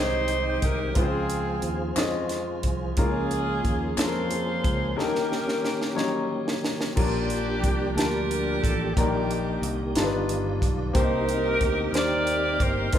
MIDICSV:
0, 0, Header, 1, 6, 480
1, 0, Start_track
1, 0, Tempo, 665927
1, 696, Time_signature, 6, 3, 24, 8
1, 9360, End_track
2, 0, Start_track
2, 0, Title_t, "Saxophone section"
2, 0, Program_c, 0, 65
2, 0, Note_on_c, 0, 63, 81
2, 0, Note_on_c, 0, 67, 80
2, 0, Note_on_c, 0, 72, 108
2, 427, Note_off_c, 0, 72, 0
2, 458, Note_on_c, 0, 70, 94
2, 668, Note_off_c, 0, 63, 0
2, 669, Note_off_c, 0, 67, 0
2, 698, Note_off_c, 0, 70, 0
2, 701, Note_on_c, 0, 65, 67
2, 706, Note_on_c, 0, 68, 96
2, 708, Note_on_c, 0, 60, 69
2, 1392, Note_off_c, 0, 65, 0
2, 1395, Note_off_c, 0, 60, 0
2, 1424, Note_off_c, 0, 68, 0
2, 2153, Note_on_c, 0, 68, 109
2, 2156, Note_on_c, 0, 65, 80
2, 2839, Note_off_c, 0, 68, 0
2, 2841, Note_off_c, 0, 65, 0
2, 2860, Note_on_c, 0, 72, 114
2, 2886, Note_on_c, 0, 65, 82
2, 2887, Note_on_c, 0, 68, 78
2, 3566, Note_off_c, 0, 65, 0
2, 3566, Note_off_c, 0, 68, 0
2, 3570, Note_on_c, 0, 70, 107
2, 3582, Note_off_c, 0, 72, 0
2, 3594, Note_on_c, 0, 61, 75
2, 3600, Note_on_c, 0, 67, 77
2, 4520, Note_off_c, 0, 61, 0
2, 4523, Note_off_c, 0, 67, 0
2, 4537, Note_off_c, 0, 70, 0
2, 5032, Note_on_c, 0, 62, 74
2, 5033, Note_on_c, 0, 67, 102
2, 5718, Note_off_c, 0, 62, 0
2, 5718, Note_off_c, 0, 67, 0
2, 5723, Note_on_c, 0, 70, 107
2, 5747, Note_on_c, 0, 67, 85
2, 5750, Note_on_c, 0, 62, 88
2, 6207, Note_on_c, 0, 69, 99
2, 6211, Note_off_c, 0, 70, 0
2, 6434, Note_off_c, 0, 67, 0
2, 6436, Note_off_c, 0, 62, 0
2, 6442, Note_on_c, 0, 67, 100
2, 6453, Note_off_c, 0, 69, 0
2, 6465, Note_on_c, 0, 63, 72
2, 6468, Note_on_c, 0, 62, 73
2, 7152, Note_off_c, 0, 63, 0
2, 7153, Note_off_c, 0, 62, 0
2, 7169, Note_off_c, 0, 67, 0
2, 7895, Note_on_c, 0, 70, 110
2, 7898, Note_on_c, 0, 67, 78
2, 7902, Note_on_c, 0, 63, 75
2, 8584, Note_off_c, 0, 70, 0
2, 8585, Note_off_c, 0, 67, 0
2, 8587, Note_off_c, 0, 63, 0
2, 8616, Note_on_c, 0, 70, 88
2, 8616, Note_on_c, 0, 74, 122
2, 8617, Note_on_c, 0, 67, 88
2, 9092, Note_off_c, 0, 74, 0
2, 9095, Note_on_c, 0, 72, 102
2, 9302, Note_off_c, 0, 70, 0
2, 9303, Note_off_c, 0, 67, 0
2, 9327, Note_on_c, 0, 63, 69
2, 9328, Note_on_c, 0, 70, 100
2, 9331, Note_off_c, 0, 72, 0
2, 9360, Note_off_c, 0, 63, 0
2, 9360, Note_off_c, 0, 70, 0
2, 9360, End_track
3, 0, Start_track
3, 0, Title_t, "Grand piano"
3, 0, Program_c, 1, 0
3, 0, Control_c, 1, 64, 127
3, 0, Note_on_c, 1, 44, 59
3, 0, Note_on_c, 1, 56, 63
3, 0, Note_on_c, 1, 60, 59
3, 0, Note_on_c, 1, 63, 59
3, 0, Note_on_c, 1, 67, 58
3, 0, Note_on_c, 1, 72, 83
3, 0, Note_on_c, 1, 73, 53
3, 0, Note_on_c, 1, 79, 67
3, 32, Note_on_c, 1, 75, 72
3, 641, Note_off_c, 1, 56, 0
3, 642, Note_off_c, 1, 60, 0
3, 643, Note_off_c, 1, 63, 0
3, 645, Note_off_c, 1, 67, 0
3, 671, Note_off_c, 1, 75, 0
3, 681, Note_on_c, 1, 60, 68
3, 683, Note_on_c, 1, 56, 73
3, 688, Note_on_c, 1, 49, 61
3, 690, Note_on_c, 1, 65, 67
3, 694, Note_on_c, 1, 71, 70
3, 706, Control_c, 1, 64, 0
3, 708, Note_off_c, 1, 44, 0
3, 711, Note_off_c, 1, 73, 0
3, 711, Note_off_c, 1, 79, 0
3, 712, Note_off_c, 1, 72, 0
3, 740, Note_on_c, 1, 72, 85
3, 742, Note_off_c, 1, 71, 0
3, 842, Control_c, 1, 64, 127
3, 1356, Note_off_c, 1, 60, 0
3, 1357, Note_off_c, 1, 56, 0
3, 1361, Note_off_c, 1, 65, 0
3, 1385, Note_off_c, 1, 49, 0
3, 1386, Note_off_c, 1, 72, 0
3, 1415, Note_on_c, 1, 56, 72
3, 1415, Note_on_c, 1, 60, 69
3, 1419, Note_on_c, 1, 61, 72
3, 1423, Note_on_c, 1, 65, 73
3, 1426, Note_on_c, 1, 75, 88
3, 2084, Note_off_c, 1, 56, 0
3, 2084, Note_off_c, 1, 60, 0
3, 2087, Note_off_c, 1, 61, 0
3, 2088, Note_off_c, 1, 65, 0
3, 2090, Note_off_c, 1, 75, 0
3, 2142, Note_on_c, 1, 56, 77
3, 2146, Note_on_c, 1, 58, 68
3, 2148, Control_c, 1, 64, 0
3, 2148, Note_on_c, 1, 61, 67
3, 2149, Note_on_c, 1, 49, 65
3, 2152, Note_on_c, 1, 65, 71
3, 2153, Note_on_c, 1, 70, 80
3, 2284, Control_c, 1, 64, 127
3, 2808, Note_off_c, 1, 56, 0
3, 2810, Note_off_c, 1, 58, 0
3, 2811, Note_off_c, 1, 61, 0
3, 2813, Note_off_c, 1, 65, 0
3, 2814, Note_off_c, 1, 70, 0
3, 2837, Note_off_c, 1, 49, 0
3, 2862, Note_on_c, 1, 56, 67
3, 2864, Note_on_c, 1, 61, 60
3, 2865, Note_on_c, 1, 58, 60
3, 2870, Note_on_c, 1, 65, 60
3, 2874, Note_on_c, 1, 69, 61
3, 2915, Note_off_c, 1, 69, 0
3, 2921, Note_on_c, 1, 70, 76
3, 3529, Note_off_c, 1, 56, 0
3, 3530, Note_off_c, 1, 58, 0
3, 3530, Note_off_c, 1, 61, 0
3, 3532, Note_off_c, 1, 65, 0
3, 3558, Note_off_c, 1, 70, 0
3, 3574, Note_on_c, 1, 55, 74
3, 3580, Note_on_c, 1, 51, 61
3, 3580, Note_on_c, 1, 58, 75
3, 3581, Note_on_c, 1, 61, 69
3, 3581, Note_on_c, 1, 63, 68
3, 3586, Note_on_c, 1, 69, 70
3, 3591, Control_c, 1, 64, 0
3, 3631, Note_off_c, 1, 69, 0
3, 3632, Note_on_c, 1, 70, 87
3, 3735, Control_c, 1, 64, 127
3, 4245, Note_off_c, 1, 55, 0
3, 4247, Note_off_c, 1, 58, 0
3, 4248, Note_off_c, 1, 61, 0
3, 4248, Note_off_c, 1, 63, 0
3, 4273, Note_off_c, 1, 51, 0
3, 4273, Note_off_c, 1, 70, 0
3, 4287, Note_on_c, 1, 58, 72
3, 4291, Note_on_c, 1, 54, 59
3, 4294, Note_on_c, 1, 61, 72
3, 4299, Note_on_c, 1, 63, 71
3, 4300, Note_on_c, 1, 73, 89
3, 4332, Note_on_c, 1, 55, 81
3, 4344, Note_off_c, 1, 54, 0
3, 4961, Note_off_c, 1, 58, 0
3, 4964, Note_off_c, 1, 61, 0
3, 4967, Note_off_c, 1, 63, 0
3, 4967, Note_off_c, 1, 73, 0
3, 4983, Note_off_c, 1, 55, 0
3, 5011, Note_on_c, 1, 55, 78
3, 5012, Note_on_c, 1, 58, 68
3, 5015, Note_on_c, 1, 46, 65
3, 5017, Note_on_c, 1, 61, 60
3, 5018, Note_on_c, 1, 65, 68
3, 5020, Note_on_c, 1, 70, 84
3, 5032, Control_c, 1, 64, 0
3, 5061, Note_on_c, 1, 62, 73
3, 5067, Note_off_c, 1, 61, 0
3, 5137, Control_c, 1, 64, 127
3, 5682, Note_off_c, 1, 55, 0
3, 5682, Note_off_c, 1, 58, 0
3, 5685, Note_off_c, 1, 65, 0
3, 5686, Note_off_c, 1, 70, 0
3, 5707, Note_off_c, 1, 62, 0
3, 5709, Note_off_c, 1, 46, 0
3, 5738, Note_on_c, 1, 58, 60
3, 5739, Note_on_c, 1, 55, 66
3, 5745, Note_on_c, 1, 62, 62
3, 5745, Note_on_c, 1, 81, 78
3, 5747, Note_on_c, 1, 65, 59
3, 6405, Note_off_c, 1, 55, 0
3, 6405, Note_off_c, 1, 58, 0
3, 6408, Note_off_c, 1, 62, 0
3, 6408, Note_off_c, 1, 81, 0
3, 6409, Note_off_c, 1, 65, 0
3, 6462, Note_on_c, 1, 58, 72
3, 6464, Note_on_c, 1, 54, 62
3, 6465, Note_on_c, 1, 46, 65
3, 6468, Note_on_c, 1, 74, 71
3, 6470, Control_c, 1, 64, 0
3, 6473, Note_on_c, 1, 51, 74
3, 6473, Note_on_c, 1, 70, 87
3, 6507, Note_on_c, 1, 55, 82
3, 6509, Note_off_c, 1, 54, 0
3, 6590, Control_c, 1, 64, 127
3, 7125, Note_off_c, 1, 58, 0
3, 7128, Note_off_c, 1, 74, 0
3, 7131, Note_off_c, 1, 51, 0
3, 7131, Note_off_c, 1, 70, 0
3, 7148, Note_off_c, 1, 55, 0
3, 7152, Note_off_c, 1, 46, 0
3, 7176, Note_on_c, 1, 55, 80
3, 7178, Note_on_c, 1, 62, 76
3, 7183, Note_on_c, 1, 43, 73
3, 7183, Note_on_c, 1, 63, 77
3, 7185, Note_on_c, 1, 65, 74
3, 7189, Control_c, 1, 64, 0
3, 7189, Note_on_c, 1, 69, 69
3, 7230, Note_off_c, 1, 69, 0
3, 7237, Note_on_c, 1, 71, 92
3, 7314, Control_c, 1, 64, 127
3, 7841, Note_off_c, 1, 55, 0
3, 7842, Note_off_c, 1, 62, 0
3, 7844, Note_off_c, 1, 63, 0
3, 7845, Note_off_c, 1, 65, 0
3, 7869, Note_off_c, 1, 43, 0
3, 7871, Note_off_c, 1, 71, 0
3, 7881, Note_on_c, 1, 60, 71
3, 7882, Note_on_c, 1, 58, 80
3, 7885, Note_on_c, 1, 48, 65
3, 7889, Note_on_c, 1, 62, 59
3, 7891, Note_on_c, 1, 67, 74
3, 7896, Note_on_c, 1, 72, 90
3, 7906, Control_c, 1, 64, 0
3, 7934, Note_on_c, 1, 63, 71
3, 7939, Note_off_c, 1, 62, 0
3, 8017, Control_c, 1, 64, 127
3, 8551, Note_off_c, 1, 60, 0
3, 8552, Note_off_c, 1, 58, 0
3, 8556, Note_off_c, 1, 67, 0
3, 8559, Note_off_c, 1, 72, 0
3, 8578, Note_off_c, 1, 63, 0
3, 8579, Note_off_c, 1, 48, 0
3, 8602, Note_on_c, 1, 58, 68
3, 8603, Note_on_c, 1, 60, 61
3, 8608, Note_on_c, 1, 63, 61
3, 8613, Note_on_c, 1, 67, 62
3, 8614, Note_on_c, 1, 72, 73
3, 9270, Note_off_c, 1, 58, 0
3, 9271, Note_off_c, 1, 60, 0
3, 9273, Note_off_c, 1, 63, 0
3, 9276, Note_off_c, 1, 67, 0
3, 9276, Note_off_c, 1, 72, 0
3, 9320, Note_on_c, 1, 57, 62
3, 9324, Note_on_c, 1, 60, 69
3, 9325, Note_on_c, 1, 63, 68
3, 9329, Note_on_c, 1, 65, 70
3, 9334, Note_on_c, 1, 72, 81
3, 9337, Control_c, 1, 64, 0
3, 9360, Note_off_c, 1, 57, 0
3, 9360, Note_off_c, 1, 60, 0
3, 9360, Note_off_c, 1, 63, 0
3, 9360, Note_off_c, 1, 65, 0
3, 9360, Note_off_c, 1, 72, 0
3, 9360, End_track
4, 0, Start_track
4, 0, Title_t, "Tonewheel organ"
4, 0, Program_c, 2, 16
4, 0, Note_on_c, 2, 51, 63
4, 0, Note_on_c, 2, 56, 58
4, 0, Note_on_c, 2, 60, 58
4, 0, Note_on_c, 2, 79, 67
4, 671, Note_off_c, 2, 51, 0
4, 671, Note_off_c, 2, 56, 0
4, 671, Note_off_c, 2, 79, 0
4, 673, Note_off_c, 2, 60, 0
4, 692, Note_on_c, 2, 53, 67
4, 693, Note_on_c, 2, 65, 57
4, 693, Note_on_c, 2, 67, 58
4, 695, Note_on_c, 2, 72, 56
4, 739, Note_on_c, 2, 68, 72
4, 742, Note_off_c, 2, 67, 0
4, 2109, Note_off_c, 2, 53, 0
4, 2110, Note_off_c, 2, 65, 0
4, 2111, Note_off_c, 2, 72, 0
4, 2133, Note_off_c, 2, 68, 0
4, 2143, Note_on_c, 2, 67, 58
4, 2145, Note_on_c, 2, 53, 64
4, 2150, Note_on_c, 2, 61, 61
4, 2152, Note_on_c, 2, 58, 58
4, 2189, Note_off_c, 2, 67, 0
4, 2196, Note_on_c, 2, 68, 69
4, 3556, Note_off_c, 2, 53, 0
4, 3558, Note_off_c, 2, 61, 0
4, 3560, Note_off_c, 2, 58, 0
4, 3582, Note_off_c, 2, 68, 0
4, 3586, Note_on_c, 2, 51, 69
4, 3587, Note_on_c, 2, 67, 75
4, 3589, Note_on_c, 2, 58, 60
4, 3590, Note_on_c, 2, 61, 61
4, 4996, Note_off_c, 2, 51, 0
4, 4996, Note_off_c, 2, 67, 0
4, 4997, Note_off_c, 2, 58, 0
4, 4997, Note_off_c, 2, 61, 0
4, 5021, Note_on_c, 2, 55, 57
4, 5022, Note_on_c, 2, 53, 65
4, 5024, Note_on_c, 2, 67, 75
4, 5027, Note_on_c, 2, 58, 58
4, 5028, Note_on_c, 2, 62, 59
4, 6431, Note_off_c, 2, 53, 0
4, 6431, Note_off_c, 2, 55, 0
4, 6432, Note_off_c, 2, 67, 0
4, 6434, Note_off_c, 2, 58, 0
4, 6434, Note_off_c, 2, 62, 0
4, 6460, Note_on_c, 2, 66, 59
4, 6462, Note_on_c, 2, 55, 59
4, 6462, Note_on_c, 2, 58, 60
4, 6464, Note_on_c, 2, 74, 64
4, 6465, Note_on_c, 2, 51, 67
4, 6505, Note_on_c, 2, 67, 71
4, 6507, Note_off_c, 2, 66, 0
4, 7168, Note_off_c, 2, 55, 0
4, 7169, Note_off_c, 2, 51, 0
4, 7171, Note_off_c, 2, 74, 0
4, 7177, Note_on_c, 2, 55, 72
4, 7178, Note_on_c, 2, 51, 78
4, 7179, Note_off_c, 2, 58, 0
4, 7179, Note_on_c, 2, 59, 72
4, 7179, Note_on_c, 2, 74, 69
4, 7181, Note_on_c, 2, 65, 83
4, 7201, Note_off_c, 2, 67, 0
4, 7884, Note_off_c, 2, 55, 0
4, 7888, Note_on_c, 2, 50, 54
4, 7892, Note_on_c, 2, 67, 78
4, 7893, Note_on_c, 2, 55, 62
4, 7893, Note_on_c, 2, 58, 59
4, 7893, Note_on_c, 2, 60, 66
4, 7895, Note_off_c, 2, 51, 0
4, 7896, Note_off_c, 2, 59, 0
4, 7896, Note_off_c, 2, 74, 0
4, 7897, Note_off_c, 2, 65, 0
4, 7938, Note_off_c, 2, 50, 0
4, 7939, Note_on_c, 2, 63, 65
4, 9299, Note_off_c, 2, 55, 0
4, 9299, Note_off_c, 2, 60, 0
4, 9299, Note_off_c, 2, 67, 0
4, 9300, Note_off_c, 2, 58, 0
4, 9321, Note_on_c, 2, 58, 59
4, 9322, Note_on_c, 2, 53, 57
4, 9322, Note_on_c, 2, 65, 70
4, 9323, Note_off_c, 2, 63, 0
4, 9325, Note_on_c, 2, 51, 65
4, 9325, Note_on_c, 2, 60, 59
4, 9360, Note_off_c, 2, 51, 0
4, 9360, Note_off_c, 2, 53, 0
4, 9360, Note_off_c, 2, 58, 0
4, 9360, Note_off_c, 2, 60, 0
4, 9360, Note_off_c, 2, 65, 0
4, 9360, End_track
5, 0, Start_track
5, 0, Title_t, "Fingered electric bass"
5, 0, Program_c, 3, 33
5, 0, Note_on_c, 3, 36, 86
5, 422, Note_off_c, 3, 36, 0
5, 448, Note_on_c, 3, 36, 93
5, 673, Note_off_c, 3, 36, 0
5, 691, Note_on_c, 3, 37, 95
5, 1146, Note_off_c, 3, 37, 0
5, 1173, Note_on_c, 3, 39, 81
5, 1397, Note_off_c, 3, 39, 0
5, 1413, Note_on_c, 3, 41, 87
5, 1868, Note_off_c, 3, 41, 0
5, 1899, Note_on_c, 3, 36, 81
5, 2120, Note_off_c, 3, 36, 0
5, 2141, Note_on_c, 3, 37, 107
5, 2593, Note_off_c, 3, 37, 0
5, 2624, Note_on_c, 3, 39, 86
5, 2844, Note_off_c, 3, 39, 0
5, 2863, Note_on_c, 3, 41, 101
5, 3314, Note_off_c, 3, 41, 0
5, 3345, Note_on_c, 3, 37, 84
5, 3565, Note_off_c, 3, 37, 0
5, 5024, Note_on_c, 3, 34, 113
5, 5506, Note_off_c, 3, 34, 0
5, 5506, Note_on_c, 3, 36, 94
5, 5725, Note_off_c, 3, 36, 0
5, 5735, Note_on_c, 3, 38, 93
5, 6189, Note_off_c, 3, 38, 0
5, 6225, Note_on_c, 3, 33, 83
5, 6443, Note_off_c, 3, 33, 0
5, 6463, Note_on_c, 3, 34, 107
5, 6912, Note_off_c, 3, 34, 0
5, 6933, Note_on_c, 3, 36, 93
5, 7156, Note_off_c, 3, 36, 0
5, 7176, Note_on_c, 3, 31, 100
5, 7627, Note_off_c, 3, 31, 0
5, 7654, Note_on_c, 3, 35, 95
5, 7875, Note_off_c, 3, 35, 0
5, 7892, Note_on_c, 3, 36, 116
5, 8343, Note_off_c, 3, 36, 0
5, 8364, Note_on_c, 3, 38, 93
5, 8588, Note_off_c, 3, 38, 0
5, 8597, Note_on_c, 3, 39, 93
5, 9054, Note_off_c, 3, 39, 0
5, 9080, Note_on_c, 3, 31, 94
5, 9305, Note_off_c, 3, 31, 0
5, 9322, Note_on_c, 3, 29, 111
5, 9360, Note_off_c, 3, 29, 0
5, 9360, End_track
6, 0, Start_track
6, 0, Title_t, "Drums"
6, 201, Note_on_c, 9, 42, 58
6, 273, Note_off_c, 9, 42, 0
6, 449, Note_on_c, 9, 42, 68
6, 451, Note_on_c, 9, 36, 80
6, 521, Note_off_c, 9, 42, 0
6, 523, Note_off_c, 9, 36, 0
6, 687, Note_on_c, 9, 42, 78
6, 693, Note_on_c, 9, 36, 103
6, 759, Note_off_c, 9, 42, 0
6, 765, Note_off_c, 9, 36, 0
6, 934, Note_on_c, 9, 42, 52
6, 1006, Note_off_c, 9, 42, 0
6, 1169, Note_on_c, 9, 42, 55
6, 1241, Note_off_c, 9, 42, 0
6, 1415, Note_on_c, 9, 42, 88
6, 1418, Note_on_c, 9, 39, 95
6, 1425, Note_on_c, 9, 38, 112
6, 1487, Note_off_c, 9, 42, 0
6, 1490, Note_off_c, 9, 39, 0
6, 1497, Note_off_c, 9, 38, 0
6, 1653, Note_on_c, 9, 42, 57
6, 1663, Note_on_c, 9, 38, 40
6, 1725, Note_off_c, 9, 42, 0
6, 1735, Note_off_c, 9, 38, 0
6, 1897, Note_on_c, 9, 42, 76
6, 1902, Note_on_c, 9, 36, 80
6, 1969, Note_off_c, 9, 42, 0
6, 1974, Note_off_c, 9, 36, 0
6, 2139, Note_on_c, 9, 42, 82
6, 2144, Note_on_c, 9, 36, 103
6, 2211, Note_off_c, 9, 42, 0
6, 2216, Note_off_c, 9, 36, 0
6, 2385, Note_on_c, 9, 42, 53
6, 2457, Note_off_c, 9, 42, 0
6, 2628, Note_on_c, 9, 36, 82
6, 2629, Note_on_c, 9, 42, 56
6, 2700, Note_off_c, 9, 36, 0
6, 2701, Note_off_c, 9, 42, 0
6, 2868, Note_on_c, 9, 39, 90
6, 2868, Note_on_c, 9, 42, 86
6, 2878, Note_on_c, 9, 38, 114
6, 2940, Note_off_c, 9, 39, 0
6, 2941, Note_off_c, 9, 42, 0
6, 2950, Note_off_c, 9, 38, 0
6, 3104, Note_on_c, 9, 42, 62
6, 3176, Note_off_c, 9, 42, 0
6, 3348, Note_on_c, 9, 36, 84
6, 3348, Note_on_c, 9, 42, 72
6, 3420, Note_off_c, 9, 36, 0
6, 3421, Note_off_c, 9, 42, 0
6, 3598, Note_on_c, 9, 38, 55
6, 3671, Note_off_c, 9, 38, 0
6, 3715, Note_on_c, 9, 38, 50
6, 3787, Note_off_c, 9, 38, 0
6, 3836, Note_on_c, 9, 38, 62
6, 3908, Note_off_c, 9, 38, 0
6, 3954, Note_on_c, 9, 38, 58
6, 4026, Note_off_c, 9, 38, 0
6, 4069, Note_on_c, 9, 38, 72
6, 4141, Note_off_c, 9, 38, 0
6, 4192, Note_on_c, 9, 38, 66
6, 4264, Note_off_c, 9, 38, 0
6, 4309, Note_on_c, 9, 38, 79
6, 4381, Note_off_c, 9, 38, 0
6, 4670, Note_on_c, 9, 38, 80
6, 4742, Note_off_c, 9, 38, 0
6, 4790, Note_on_c, 9, 38, 102
6, 4862, Note_off_c, 9, 38, 0
6, 4906, Note_on_c, 9, 38, 87
6, 4978, Note_off_c, 9, 38, 0
6, 5022, Note_on_c, 9, 49, 97
6, 5026, Note_on_c, 9, 36, 102
6, 5095, Note_off_c, 9, 49, 0
6, 5098, Note_off_c, 9, 36, 0
6, 5261, Note_on_c, 9, 42, 52
6, 5334, Note_off_c, 9, 42, 0
6, 5504, Note_on_c, 9, 42, 63
6, 5505, Note_on_c, 9, 36, 81
6, 5577, Note_off_c, 9, 36, 0
6, 5577, Note_off_c, 9, 42, 0
6, 5750, Note_on_c, 9, 42, 87
6, 5760, Note_on_c, 9, 38, 113
6, 5822, Note_off_c, 9, 42, 0
6, 5832, Note_off_c, 9, 38, 0
6, 5990, Note_on_c, 9, 42, 59
6, 6062, Note_off_c, 9, 42, 0
6, 6225, Note_on_c, 9, 36, 88
6, 6231, Note_on_c, 9, 42, 76
6, 6297, Note_off_c, 9, 36, 0
6, 6303, Note_off_c, 9, 42, 0
6, 6464, Note_on_c, 9, 36, 99
6, 6465, Note_on_c, 9, 42, 83
6, 6537, Note_off_c, 9, 36, 0
6, 6537, Note_off_c, 9, 42, 0
6, 6708, Note_on_c, 9, 42, 54
6, 6780, Note_off_c, 9, 42, 0
6, 6942, Note_on_c, 9, 42, 65
6, 7015, Note_off_c, 9, 42, 0
6, 7175, Note_on_c, 9, 42, 90
6, 7185, Note_on_c, 9, 38, 116
6, 7248, Note_off_c, 9, 42, 0
6, 7257, Note_off_c, 9, 38, 0
6, 7418, Note_on_c, 9, 42, 63
6, 7490, Note_off_c, 9, 42, 0
6, 7655, Note_on_c, 9, 36, 86
6, 7659, Note_on_c, 9, 42, 77
6, 7727, Note_off_c, 9, 36, 0
6, 7731, Note_off_c, 9, 42, 0
6, 7892, Note_on_c, 9, 42, 86
6, 7893, Note_on_c, 9, 36, 106
6, 7964, Note_off_c, 9, 42, 0
6, 7965, Note_off_c, 9, 36, 0
6, 8135, Note_on_c, 9, 42, 53
6, 8207, Note_off_c, 9, 42, 0
6, 8367, Note_on_c, 9, 42, 61
6, 8368, Note_on_c, 9, 36, 80
6, 8439, Note_off_c, 9, 42, 0
6, 8440, Note_off_c, 9, 36, 0
6, 8607, Note_on_c, 9, 42, 89
6, 8617, Note_on_c, 9, 38, 112
6, 8679, Note_off_c, 9, 42, 0
6, 8689, Note_off_c, 9, 38, 0
6, 8843, Note_on_c, 9, 42, 59
6, 8915, Note_off_c, 9, 42, 0
6, 9083, Note_on_c, 9, 36, 93
6, 9084, Note_on_c, 9, 42, 72
6, 9155, Note_off_c, 9, 36, 0
6, 9156, Note_off_c, 9, 42, 0
6, 9317, Note_on_c, 9, 42, 78
6, 9322, Note_on_c, 9, 36, 104
6, 9360, Note_off_c, 9, 36, 0
6, 9360, Note_off_c, 9, 42, 0
6, 9360, End_track
0, 0, End_of_file